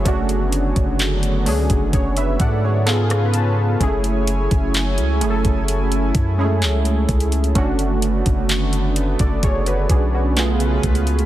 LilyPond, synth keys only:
\new Staff \with { instrumentName = "Synth keys" } { \time 4/4 \key fis \minor \tempo 4 = 64 << { <gis' cis''>16 r4. r16 <gis' cis''>16 <b' e''>16 <a' d'' fis''>16 <gis' cis''>16 eis''8 a''8 | r1 | r4. r16 <a' d''>16 <gis' cis''>16 <fis' b'>16 <d' gis'>16 <cis' fis'>8 r8. | } \\ { <a cis' d' fis'>4 r8 <a cis' d' gis'>8. r8. <b eis' gis' a'>8. r16 | <gis a cis' e' gis'>4 r8 <a cis' e' gis' a'>8. r8 <gis a cis' e' gis'>8. r8 | <a cis' d' fis'>4 r2 <a b eis' gis'>8. r16 | } >> }